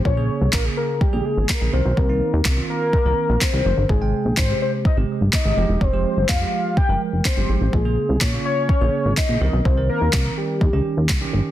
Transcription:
<<
  \new Staff \with { instrumentName = "Soft synth lead" } { \time 4/4 \key bes \dorian \tempo 4 = 125 des''4 bes'8 bes'8 g'8 aes'8 bes'8 c''8 | bes'4. bes'4. c''4 | aes'4 c''8 c''8 ees''8 r8 ees''4 | c''4 f''8 f''8 g''8 r8 c''4 |
aes'4 des''8 des''4. ees''4 | c''8 bes'4 g'4. r4 | }
  \new Staff \with { instrumentName = "Tine electric piano" } { \time 4/4 \key bes \dorian r16 <des bes aes'>8. r16 <des bes aes'>8. r16 <des bes aes'>8. r16 <des bes aes'>16 <ees c' bes'>8 | r16 <ees c' ees'>8. r16 <ees c' f'>8. r16 <ees c' bes'>8. r16 <ees c' bes'>8. | r16 <c aes g''>8. r16 <c aes g'>8. r16 <c aes g'>8. r16 <c aes g'>16 <f aes g'>8 | r16 <f aes g'>8. r16 <f aes g'>8. r16 <f aes bes'>8. r16 <f aes g'>8. |
r16 <des bes aes'>8. r16 <des bes f'>8. r16 <des bes aes'>8. r16 <des bes aes'>16 <ees c' bes'>8 | r16 <ees c' bes'>8. r16 <ees c' bes'>8. r16 <ees des' g'>8. r16 <ees des' g'>8. | }
  \new Staff \with { instrumentName = "Analog synth bass" } { \clef bass \time 4/4 \key bes \dorian bes,,8. c,16 bes,,8 r8. bes,,16 r16 aes,,16 r16 bes,,16 c,16 ces,16 | c,8. ees,16 c,8 r8. c,16 r16 bes,,16 r16 c,16 ges,,16 g,,16 | aes,,8. bes,,16 aes,,8 r8. aes,,16 r16 g,,16 r16 aes,,16 f,,16 fes,,16 | f,,8. g,,16 f,,8 r8. g,,16 r16 f,,16 r16 g,,16 aes,,16 a,,16 |
bes,,8. c,16 bes,,8 r8. bes,,16 r16 aes,,16 r16 bes,,16 c,16 ces,16 | c,8. ees,16 c,8 r8 ees,16 des,16 r16 ees,16 c,8 g,,16 r16 | }
  \new DrumStaff \with { instrumentName = "Drums" } \drummode { \time 4/4 bd4 <hc bd sn>4 bd4 <hc bd sn>4 | bd4 <hc bd sn>4 bd4 <hc bd sn>4 | bd4 <hc bd sn>4 bd4 <hc bd sn>4 | bd4 <hc bd sn>4 bd4 <hc bd sn>4 |
bd4 <hc bd sn>4 bd4 <hc bd sn>4 | bd4 <hc bd sn>4 bd4 <hc bd sn>4 | }
>>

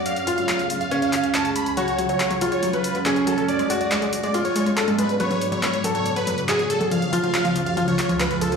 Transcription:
<<
  \new Staff \with { instrumentName = "Supersaw synth" } { \time 4/4 \key fis \minor \tempo 4 = 140 eis''8 r16 eis''8. r16 eis''8 eis''8 r16 a''8 b''8 | cis''8 r16 cis''8. r16 cis''8 b'8 r16 gis'8 a'8 | d''8 r16 d''8. r16 d''8 cis''8 r16 a'8 b'8 | cis''8 r16 cis''8. r16 cis''8 b'8 r16 gis'8 a'8 |
eis''8 r16 eis''8. r16 eis''8 cis''8 r16 b'8 a'8 | }
  \new Staff \with { instrumentName = "Grand piano" } { \time 4/4 \key fis \minor fis'8 eis'4. cis'2 | fis'4. eis'4. cis'4~ | cis'8 fis'4. eis'2 | b'4. a'4. gis'4~ |
gis'8 eis'4. eis'2 | }
  \new Staff \with { instrumentName = "Ambient pad" } { \time 4/4 \key fis \minor <cis, cis gis eis' gis'>1 | <fis, fis a cis' cis''>1 | <gis, gis b d' d''>1 | <fis, cis a fis' cis''>1 |
<cis, cis gis eis' gis'>1 | }
  \new Staff \with { instrumentName = "Synth pluck" } { \clef bass \time 4/4 \key fis \minor r1 | fis16 r16 fis16 fis16 r16 fis16 fis16 r16 fis16 fis16 r16 fis16 fis16 r16 fis16 fis16 | r16 gis16 gis16 r16 gis16 gis16 r16 gis16 gis16 r16 gis16 gis16 r16 gis16 gis16 r16 | fis16 fis16 r16 fis16 fis16 r16 fis16 fis16 r16 fis16 fis16 r16 fis16 fis16 r16 fis16 |
eis16 r16 eis16 eis16 r16 eis16 eis16 r16 eis16 eis16 r16 eis16 eis16 r16 eis16 eis16 | }
  \new DrumStaff \with { instrumentName = "Drums" } \drummode { \time 4/4 hh16 hh16 hh16 hh16 <hc hh>16 hh16 hh16 hh16 hh16 hh16 <hc hh>16 hh16 <hc hh>16 hh16 hh16 hh16 | hh16 hh16 hh16 hh16 <hc hh>16 hh16 hh16 hh16 hh16 hh16 hh16 hh16 <hc hh>16 hh16 hh16 hh16 | hh16 hh16 hh16 hh16 <hc hh>16 hh16 hh16 hh16 hh16 hh16 hh16 hh16 <hc hh>16 hh16 hh16 hh16 | hh16 hh16 hh16 hh16 <hc hh>16 hh16 hh16 hh16 hh16 hh16 hh16 hh16 <hc hh>16 hh16 hh16 hh16 |
hh16 hh16 hh16 hh16 <hc hh>16 hh16 hh16 hh16 hh16 hh16 <hc hh>16 hh16 <hc hh>16 hh16 hh16 hh16 | }
>>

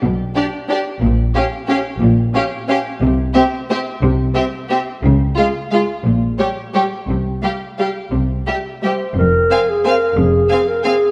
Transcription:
<<
  \new Staff \with { instrumentName = "Violin section" } { \time 3/4 \key g \major \tempo 4 = 177 r4 d''4 d''4 | \key f \minor r4 f''4 f''4 | r4 f''4 f''4 | r4 e''4 e''4 |
r4 e''4 e''4 | r4 f''4 f''4 | r4 des''4 des''4 | r4 f''4 f''4 |
r4 e''4 e''4 | r4 aes''4 aes''4 | r4 aes''4 aes''4 | }
  \new Staff \with { instrumentName = "Clarinet" } { \time 3/4 \key g \major r2. | \key f \minor r2. | r2. | r2. |
r2. | r2. | r2. | r2. |
r2 c''4 | bes'4. aes'8 bes'4 | aes'4. bes'8 aes'4 | }
  \new Staff \with { instrumentName = "Violin section" } { \time 3/4 \key g \major r4 g'4 g'4 | \key f \minor r4 g'4 g'4 | r4 g'4 g'4 | r4 g'4 g'4 |
r4 g'4 g'4 | r4 f'4 f'4 | r4 g'4 g'4 | r4 g'4 g'4 |
r4 g'4 g'4 | r4 f''4 f''4 | r4 f''4 f''4 | }
  \new Staff \with { instrumentName = "Viola section" } { \time 3/4 \key g \major r4 d'4 d'4 | \key f \minor r4 des'4 des'4 | r4 des'4 des'4 | r4 c'4 c'4 |
r4 c'4 c'4 | r4 aes4 aes4 | r4 g4 g4 | r4 g4 g4 |
r4 g4 g4 | r4 c'4 c'4 | r4 c'4 c'4 | }
  \new Staff \with { instrumentName = "Cello section" } { \clef bass \time 3/4 \key g \major b,4 r2 | \key f \minor bes,4 r2 | bes,4 r2 | c4 r2 |
c4 r2 | des4 r2 | bes,4 r2 | c4 r2 |
c4 r2 | f,4 r2 | f,4 r2 | }
  \new Staff \with { instrumentName = "Double bass section" } { \clef bass \time 3/4 \key g \major b,,4 r2 | \key f \minor bes,,4 r2 | bes,,4 r2 | c,4 r2 |
c,4 r2 | des,4 r2 | bes,,4 r2 | c,4 r2 |
c,4 r2 | f,,4 r2 | f,,4 r2 | }
>>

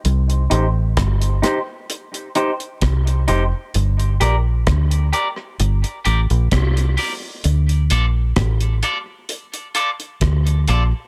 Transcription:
<<
  \new Staff \with { instrumentName = "Clean electric guitar" } { \time 4/4 \key c \dorian \tempo 4 = 65 r8 <ees' g' c''>8 r8 <ees' g' c''>8 r8 <ees' g' c''>8 r8 <ees' g' c''>8 | r8 <g' bes' d''>8 r8 <g' bes' d''>8 r8 <g' bes' d''>8 r8 <g' bes' d''>8 | r8 <f' a' d''>8 r8 <f' a' d''>8 r8 <f' a' d''>8 r8 <f' a' d''>8 | }
  \new Staff \with { instrumentName = "Fingered electric bass" } { \clef bass \time 4/4 \key c \dorian c,8 a,,8 g,,8 r4. c,8 f,,16 r16 | g,,8 bes,,8 d,8 r8 g,,16 r16 a,,16 bes,,16 c,8 r8 | d,8 bes,,8 a,,8 r4. d,8 bes,,16 r16 | }
  \new DrumStaff \with { instrumentName = "Drums" } \drummode { \time 4/4 hh16 hh16 hh8 <hh bd ss>16 hh16 <hh ss>8 hh16 hh16 hh16 hh16 <hh bd ss>16 hh16 hh8 | hh16 hh16 hh8 <hh bd ss>16 hh16 hh8 hh16 hh16 hh16 hh16 <hh bd ss>16 hh16 hho8 | hh16 hh16 hh8 <hh bd ss>16 hh16 hh8 hh16 hh16 hh16 hh16 <hh bd ss>16 hh16 hh8 | }
>>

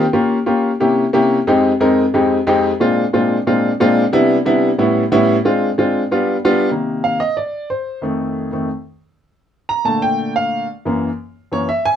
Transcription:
<<
  \new Staff \with { instrumentName = "Upright piano" } { \time 4/4 \key c \minor \tempo 4 = 181 r16 <bes des' f' g'>8. r16 <bes des' f' g'>8. r16 <c bes des' e' g'>8. r16 <c bes des' e' g'>8. | r16 <f, aes c' ees' g'>8. r16 <f, aes c' ees' bes'>8. r16 <f, aes c' ees' g'>8. r16 <f, aes c' ees' g'>8. | r16 <bes, aes c' d' f'>8. r16 <bes, aes c' d' f'>8. r16 <bes, aes c' d' f'>8. r16 <bes, aes c' d' f'>8. | r16 <c g b d' e'>8. r16 <c g b d' e'>8. r16 <a, g b cis' e'>8. r16 <a, g b cis' e'>8. |
r16 <aes c' d' f'>8. r16 <aes c' d' f'>8. r16 <g b d' f'>8. r16 <g b d' f'>8. | r4 f''8 ees''8 d''4 c''4 | r1 | r4 bes''8 a''8 g''4 f''4 |
r2 r8 cis''8 e''8 aes''8 | }
  \new Staff \with { instrumentName = "Upright piano" } { \clef bass \time 4/4 \key c \minor r1 | r1 | r1 | r1 |
r1 | <c ees bes>4. r2 r8 | <f, ees a>4. <f, ees a>8 r2 | r4. <bes, d a>2~ <bes, d a>8 |
r8 <fis, e ais>8 r4. <fis, e ais>8 r4 | }
>>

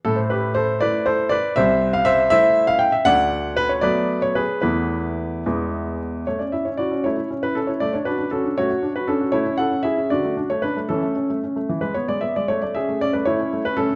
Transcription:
<<
  \new Staff \with { instrumentName = "Grand piano" } { \time 6/8 \key a \minor \tempo 4. = 78 a'16 c''16 <g' b'>8 <a' c''>8 <b' d''>8 <a' c''>8 <b' d''>8 | <c'' e''>8. f''16 <c'' e''>8 <c'' e''>8. f''16 g''16 e''16 | \key a \major <d'' fis''>4 b'16 cis''16 <b' d''>8. cis''16 <gis' b'>8 | <e' b'>2~ <e' b'>8 r8 |
cis''16 d''16 e''16 cis''16 <fis' d''>8 <e' cis''>8. b'16 a'16 cis''16 | d''16 cis''16 <d' b'>8 <cis' a'>8 <fis' cis''>8. b'16 <cis' a'>8 | <e' cis''>8 <a' fis''>8 <gis' e''>8 <fis' d''>8. cis''16 <d' b'>8 | <cis' a'>4. r16 b'16 cis''16 d''16 e''16 d''16 |
cis''16 d''16 <gis' e''>8 d''16 b'16 <e' cis''>8. b'16 <cis' a'>8 | }
  \new Staff \with { instrumentName = "Grand piano" } { \time 6/8 \key a \minor a,4. <a e'>4. | c,4. <a e'>4. | \key a \major d,4. <fis a b>4. | <e, e a b>4. <e, e gis b>4. |
a16 cis'16 e'16 cis'16 e'16 cis'16 a16 e'16 cis'16 e'16 cis'16 e'16 | a16 d'16 fis'16 d'16 fis'16 d'16 a16 fis'16 d'16 fis'16 d'16 fis'16 | a16 cis'16 e'16 cis'16 e'16 cis'16 d16 a16 d'16 a16 r16 a16 | e16 a16 cis'16 a16 cis'16 a16 e16 gis16 b16 gis16 b16 gis16 |
a16 a16 cis'16 a16 cis'16 a16 a16 cis'16 a16 cis'16 a16 cis'16 | }
>>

